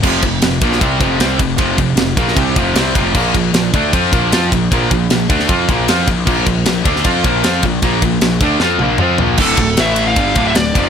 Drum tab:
CC |x---------------|----------------|x---------------|----------------|
RD |--x-x-x-x-x-x-x-|x-x-x-x-x-x-x-x-|--x-x-x-x-x-x-x-|x-x-x-x-x-x-x-x-|
SD |----o--o----o---|----o--o----o---|----o-------o---|----o--o----o---|
T1 |----------------|----------------|----------------|----------------|
T2 |----------------|----------------|----------------|----------------|
FT |----------------|----------------|----------------|----------------|
BD |o-o---o-o-o---o-|o-o---o-o-o---o-|o-o---o-o-o---o-|o-o---o-o-o---o-|

CC |x---------------|----------------|x---------------|
RD |--x-x-x-x-x-x-x-|x-x-x-x---------|--x-x-x-x-x-x-x-|
SD |----o--o----o---|----o---o-------|----o-------o---|
T1 |----------------|----------o-----|----------------|
T2 |----------------|------------o---|----------------|
FT |----------------|--------------o-|----------------|
BD |o-o---o-o-o---o-|o-o---o---------|o-o-----o-o---o-|